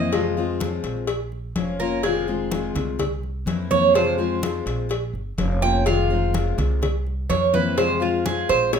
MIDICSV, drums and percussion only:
0, 0, Header, 1, 2, 480
1, 0, Start_track
1, 0, Key_signature, -4, "minor"
1, 0, Tempo, 477707
1, 133, Time_signature, 4, 2, 24, 8
1, 8837, End_track
2, 0, Start_track
2, 0, Title_t, "Drums"
2, 126, Note_on_c, 9, 56, 111
2, 227, Note_off_c, 9, 56, 0
2, 373, Note_on_c, 9, 63, 38
2, 474, Note_off_c, 9, 63, 0
2, 607, Note_on_c, 9, 56, 67
2, 614, Note_on_c, 9, 63, 102
2, 708, Note_off_c, 9, 56, 0
2, 715, Note_off_c, 9, 63, 0
2, 842, Note_on_c, 9, 56, 62
2, 855, Note_on_c, 9, 63, 34
2, 942, Note_off_c, 9, 56, 0
2, 956, Note_off_c, 9, 63, 0
2, 1080, Note_on_c, 9, 56, 104
2, 1089, Note_on_c, 9, 63, 35
2, 1180, Note_off_c, 9, 56, 0
2, 1190, Note_off_c, 9, 63, 0
2, 1325, Note_on_c, 9, 63, 36
2, 1426, Note_off_c, 9, 63, 0
2, 1564, Note_on_c, 9, 56, 73
2, 1565, Note_on_c, 9, 63, 89
2, 1665, Note_off_c, 9, 56, 0
2, 1665, Note_off_c, 9, 63, 0
2, 2043, Note_on_c, 9, 56, 106
2, 2052, Note_on_c, 9, 63, 38
2, 2144, Note_off_c, 9, 56, 0
2, 2152, Note_off_c, 9, 63, 0
2, 2291, Note_on_c, 9, 63, 38
2, 2392, Note_off_c, 9, 63, 0
2, 2526, Note_on_c, 9, 56, 69
2, 2529, Note_on_c, 9, 63, 97
2, 2627, Note_off_c, 9, 56, 0
2, 2629, Note_off_c, 9, 63, 0
2, 2769, Note_on_c, 9, 56, 73
2, 2774, Note_on_c, 9, 63, 35
2, 2774, Note_on_c, 9, 64, 80
2, 2869, Note_off_c, 9, 56, 0
2, 2874, Note_off_c, 9, 63, 0
2, 2874, Note_off_c, 9, 64, 0
2, 3008, Note_on_c, 9, 63, 36
2, 3008, Note_on_c, 9, 64, 73
2, 3010, Note_on_c, 9, 56, 102
2, 3108, Note_off_c, 9, 63, 0
2, 3108, Note_off_c, 9, 64, 0
2, 3110, Note_off_c, 9, 56, 0
2, 3250, Note_on_c, 9, 63, 38
2, 3350, Note_off_c, 9, 63, 0
2, 3486, Note_on_c, 9, 63, 90
2, 3492, Note_on_c, 9, 56, 72
2, 3586, Note_off_c, 9, 63, 0
2, 3593, Note_off_c, 9, 56, 0
2, 3731, Note_on_c, 9, 63, 91
2, 3832, Note_off_c, 9, 63, 0
2, 3971, Note_on_c, 9, 63, 33
2, 3973, Note_on_c, 9, 56, 102
2, 4072, Note_off_c, 9, 63, 0
2, 4074, Note_off_c, 9, 56, 0
2, 4211, Note_on_c, 9, 63, 39
2, 4311, Note_off_c, 9, 63, 0
2, 4451, Note_on_c, 9, 63, 103
2, 4453, Note_on_c, 9, 56, 75
2, 4552, Note_off_c, 9, 63, 0
2, 4554, Note_off_c, 9, 56, 0
2, 4690, Note_on_c, 9, 56, 72
2, 4693, Note_on_c, 9, 63, 33
2, 4791, Note_off_c, 9, 56, 0
2, 4793, Note_off_c, 9, 63, 0
2, 4931, Note_on_c, 9, 56, 106
2, 4932, Note_on_c, 9, 63, 40
2, 5031, Note_off_c, 9, 56, 0
2, 5033, Note_off_c, 9, 63, 0
2, 5174, Note_on_c, 9, 63, 36
2, 5275, Note_off_c, 9, 63, 0
2, 5409, Note_on_c, 9, 56, 78
2, 5410, Note_on_c, 9, 63, 84
2, 5510, Note_off_c, 9, 56, 0
2, 5511, Note_off_c, 9, 63, 0
2, 5888, Note_on_c, 9, 56, 104
2, 5891, Note_on_c, 9, 63, 34
2, 5988, Note_off_c, 9, 56, 0
2, 5991, Note_off_c, 9, 63, 0
2, 6132, Note_on_c, 9, 63, 39
2, 6233, Note_off_c, 9, 63, 0
2, 6374, Note_on_c, 9, 63, 102
2, 6378, Note_on_c, 9, 56, 75
2, 6474, Note_off_c, 9, 63, 0
2, 6479, Note_off_c, 9, 56, 0
2, 6614, Note_on_c, 9, 63, 35
2, 6614, Note_on_c, 9, 64, 80
2, 6618, Note_on_c, 9, 56, 67
2, 6715, Note_off_c, 9, 63, 0
2, 6715, Note_off_c, 9, 64, 0
2, 6718, Note_off_c, 9, 56, 0
2, 6859, Note_on_c, 9, 63, 35
2, 6859, Note_on_c, 9, 64, 78
2, 6860, Note_on_c, 9, 56, 107
2, 6960, Note_off_c, 9, 56, 0
2, 6960, Note_off_c, 9, 63, 0
2, 6960, Note_off_c, 9, 64, 0
2, 7099, Note_on_c, 9, 63, 35
2, 7200, Note_off_c, 9, 63, 0
2, 7333, Note_on_c, 9, 63, 88
2, 7336, Note_on_c, 9, 56, 76
2, 7434, Note_off_c, 9, 63, 0
2, 7436, Note_off_c, 9, 56, 0
2, 7574, Note_on_c, 9, 63, 82
2, 7675, Note_off_c, 9, 63, 0
2, 7814, Note_on_c, 9, 56, 107
2, 7915, Note_off_c, 9, 56, 0
2, 8061, Note_on_c, 9, 63, 38
2, 8161, Note_off_c, 9, 63, 0
2, 8297, Note_on_c, 9, 63, 93
2, 8298, Note_on_c, 9, 56, 68
2, 8397, Note_off_c, 9, 63, 0
2, 8398, Note_off_c, 9, 56, 0
2, 8535, Note_on_c, 9, 56, 73
2, 8536, Note_on_c, 9, 63, 36
2, 8636, Note_off_c, 9, 56, 0
2, 8637, Note_off_c, 9, 63, 0
2, 8773, Note_on_c, 9, 56, 108
2, 8773, Note_on_c, 9, 60, 95
2, 8777, Note_on_c, 9, 63, 34
2, 8837, Note_off_c, 9, 56, 0
2, 8837, Note_off_c, 9, 60, 0
2, 8837, Note_off_c, 9, 63, 0
2, 8837, End_track
0, 0, End_of_file